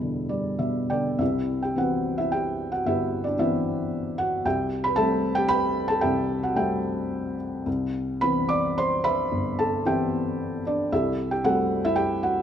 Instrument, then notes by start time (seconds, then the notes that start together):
felt piano
Already playing: E2 B2 G3 E4
0.01 D3
0.29 G3 D5
0.59 B2 E5
0.90 D3 D4 D5 G5
1.18 C2 E4 G4 B4 E5
1.63 G4 G5
1.76 E3 B3 C4 F#5
1.80 F#4 B4
2.18 E4 E5
2.32 G4 E5 G5
2.72 F#4 F#5
2.85 G1 E4 G4 B4 E5
3.24 D4 D5
3.38 E3 B3 C4 E4 B4 E5
4.18 F#4 F#5
4.45 C2 G4 E5 G5
4.84 B4 B5
4.96 G3 A3 C4 A4 E5 A5
5.35 G4 G5
5.49 B4 G5 B5
5.88 A4 A5
6.01 C2 G4 E5 G5
6.43 F#4 F#5
6.55 G3 A3 C4 G4 E5 G5
7.66 C2
8.21 E3 B3 C4 B4 B5
8.49 D5 D6
8.78 C5 C6
9.04 B4 E5 B5
9.32 G1
9.59 A4 A5
9.85 E3 B3 C4 G4 E5 G5
10.67 D4 D5
10.92 C2 E4 G4 A4 E5
11.31 G4 G5
11.44 G3 A3 C4 F#4 A4 F#5
11.85 E4 E5
11.96 G4 G5
12.23 F#4 F#5